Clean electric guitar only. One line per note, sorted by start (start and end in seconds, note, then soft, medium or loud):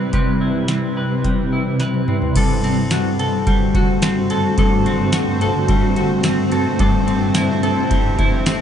0.00 0.12 C3 medium
0.00 1.23 G3 medium
0.00 0.69 C4 medium
0.00 0.40 E4 medium
0.00 0.13 B4 medium
0.13 2.36 C3 medium
0.13 0.96 B4 medium
0.41 1.51 E4 medium
0.69 2.08 C4 medium
0.97 1.79 B4 medium
1.25 2.41 G3 medium
1.53 2.41 E4 soft
1.80 2.36 B4 medium
2.08 2.63 C4 soft
2.36 4.57 G2 medium
2.36 3.19 A4 medium
2.64 4.02 C4 medium
2.91 3.74 F#4 medium
3.20 4.30 A4 medium
3.47 5.69 G3 medium
3.75 5.13 F#4 medium
4.03 4.86 C4 medium
4.31 4.58 A4 medium
4.58 6.78 G2 medium
4.58 5.41 A4 medium
4.86 6.24 C4 medium
5.14 5.96 F#4 medium
5.42 6.52 A4 medium
5.69 7.66 G3 medium
5.97 6.86 F#4 medium
6.25 7.07 C4 medium
6.52 6.80 A4 medium
6.80 8.61 G2 medium
6.80 7.62 A4 medium
7.07 8.46 C4 medium
7.35 8.17 E4 medium
7.63 8.61 A4 medium
7.90 8.61 G3 medium
8.19 8.61 E4 medium
8.47 8.61 C4 medium